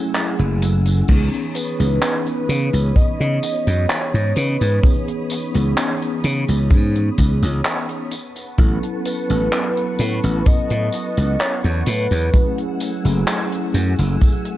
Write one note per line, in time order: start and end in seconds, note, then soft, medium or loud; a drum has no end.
0.00 1.10 F#3 loud
0.00 1.04 A3 medium
0.00 1.10 A3 medium
0.00 1.08 C#4 medium
0.00 1.10 E4 medium
0.00 1.09 G#4 loud
0.00 1.04 F#5 medium
0.00 1.05 G#5 medium
0.00 1.04 E6 medium
0.14 clap loud
0.14 closed hi-hat medium
0.14 tambourine soft
0.39 1.01 F#1 loud
0.39 closed hi-hat medium
0.62 closed hi-hat loud
0.62 tambourine medium
0.85 closed hi-hat medium
0.85 tambourine soft
1.07 1.28 C#2 medium
1.07 1.73 E3 medium
1.07 1.74 B3 medium
1.07 1.74 C#4 medium
1.07 1.74 D#4 medium
1.07 1.74 G#4 medium
1.07 8.07 C#5 medium
1.07 8.07 B5 medium
1.07 8.07 D#6 medium
1.07 kick loud
1.07 closed hi-hat medium
1.07 crash medium
1.07 tambourine soft
1.34 closed hi-hat medium
1.55 2.97 B4 loud
1.55 closed hi-hat loud
1.55 tambourine medium
1.78 1.98 C#2 medium
1.78 4.77 E3 medium
1.78 4.78 B3 medium
1.78 4.78 C#4 medium
1.78 4.78 D#4 medium
1.78 4.79 G#4 loud
1.78 closed hi-hat medium
1.78 tambourine soft
2.02 clap loud
2.02 closed hi-hat medium
2.02 tambourine soft
2.26 closed hi-hat medium
2.49 2.69 C#3 medium
2.49 closed hi-hat medium
2.49 tambourine medium
2.73 2.91 C#2 loud
2.73 closed hi-hat medium
2.73 tambourine soft
2.95 3.91 D#5 loud
2.95 kick loud
2.95 closed hi-hat medium
2.95 tambourine soft
3.20 3.38 C#3 medium
3.20 closed hi-hat medium
3.43 closed hi-hat loud
3.43 tambourine medium
3.67 3.85 F#2 medium
3.67 closed hi-hat medium
3.67 tambourine soft
3.89 4.37 C#5 loud
3.89 clap loud
3.89 closed hi-hat medium
3.89 tambourine soft
4.14 4.32 G#2 loud
4.14 closed hi-hat medium
4.36 4.56 C#3 loud
4.36 5.30 B4 loud
4.36 closed hi-hat medium
4.36 tambourine medium
4.61 4.79 G#2 medium
4.61 closed hi-hat medium
4.61 tambourine soft
4.82 5.48 E3 medium
4.82 5.49 B3 medium
4.82 5.49 C#4 medium
4.82 5.49 D#4 medium
4.82 5.49 G#4 loud
4.82 kick loud
4.82 closed hi-hat medium
4.82 tambourine soft
5.08 closed hi-hat medium
5.30 closed hi-hat loud
5.30 tambourine medium
5.53 5.73 C#2 medium
5.53 8.08 E3 medium
5.53 8.08 B3 medium
5.53 8.09 C#4 medium
5.53 8.09 D#4 medium
5.53 8.09 G#4 loud
5.53 closed hi-hat medium
5.53 tambourine soft
5.77 clap loud
5.77 closed hi-hat medium
5.77 tambourine soft
6.02 closed hi-hat medium
6.24 6.44 C#3 loud
6.24 closed hi-hat loud
6.24 tambourine medium
6.48 6.72 C#2 medium
6.48 closed hi-hat medium
6.48 tambourine soft
6.70 7.09 G#2 medium
6.70 kick loud
6.70 closed hi-hat medium
6.70 tambourine soft
6.95 closed hi-hat medium
7.18 7.37 C#2 medium
7.18 kick medium
7.18 closed hi-hat loud
7.18 tambourine medium
7.42 7.60 C#2 medium
7.42 closed hi-hat medium
7.42 tambourine soft
7.65 clap loud
7.65 closed hi-hat medium
7.65 tambourine soft
7.89 closed hi-hat medium
8.11 12.29 B4 medium
8.11 14.57 F#5 medium
8.11 12.29 A5 medium
8.11 12.29 C#6 medium
8.11 closed hi-hat loud
8.11 tambourine medium
8.36 closed hi-hat medium
8.36 tambourine soft
8.58 8.78 A1 loud
8.58 9.23 F#3 medium
8.58 9.24 B3 medium
8.58 9.24 C#4 medium
8.58 9.24 E4 medium
8.58 9.24 A4 medium
8.58 kick loud
8.58 closed hi-hat medium
8.58 tambourine soft
8.83 closed hi-hat medium
9.05 10.48 B4 loud
9.05 closed hi-hat loud
9.05 tambourine medium
9.28 9.48 A1 medium
9.28 12.27 F#3 loud
9.28 12.27 B3 medium
9.28 12.28 C#4 medium
9.28 12.28 E4 medium
9.28 12.29 A4 loud
9.28 closed hi-hat medium
9.28 tambourine soft
9.52 clap loud
9.52 closed hi-hat medium
9.52 tambourine soft
9.77 closed hi-hat medium
9.99 10.19 A2 loud
9.99 closed hi-hat loud
9.99 tambourine medium
10.23 10.41 A1 loud
10.23 closed hi-hat medium
10.23 tambourine soft
10.46 11.42 D#5 loud
10.46 kick loud
10.46 closed hi-hat medium
10.46 tambourine soft
10.70 10.88 A2 medium
10.70 closed hi-hat medium
10.92 closed hi-hat loud
10.92 tambourine medium
11.17 11.35 C#2 medium
11.17 closed hi-hat medium
11.17 tambourine soft
11.39 11.88 C#5 loud
11.39 clap loud
11.39 closed hi-hat medium
11.39 tambourine soft
11.64 11.82 E2 loud
11.64 closed hi-hat medium
11.86 12.06 A2 loud
11.86 12.80 B4 medium
11.86 closed hi-hat loud
11.86 tambourine medium
12.11 12.29 E2 loud
12.11 closed hi-hat medium
12.11 tambourine soft
12.32 12.98 F#3 medium
12.32 12.99 A3 medium
12.32 14.57 A3 medium
12.32 12.99 C#4 medium
12.32 12.99 E4 medium
12.32 12.99 G#4 loud
12.32 14.57 G#5 medium
12.32 14.57 E6 medium
12.32 kick loud
12.32 closed hi-hat medium
12.32 tambourine soft
12.58 closed hi-hat medium
12.80 closed hi-hat medium
12.80 tambourine medium
13.03 13.23 F#1 medium
13.03 14.57 F#3 medium
13.03 14.57 A3 medium
13.03 14.57 C#4 medium
13.03 14.57 E4 medium
13.03 14.57 G#4 loud
13.03 closed hi-hat medium
13.03 tambourine soft
13.27 clap loud
13.27 closed hi-hat medium
13.27 tambourine soft
13.52 closed hi-hat medium
13.74 13.94 F#2 medium
13.74 closed hi-hat medium
13.74 tambourine medium
13.98 14.16 F#1 medium
13.98 closed hi-hat medium
13.98 tambourine soft
14.21 kick loud
14.21 closed hi-hat medium
14.21 tambourine soft
14.45 closed hi-hat medium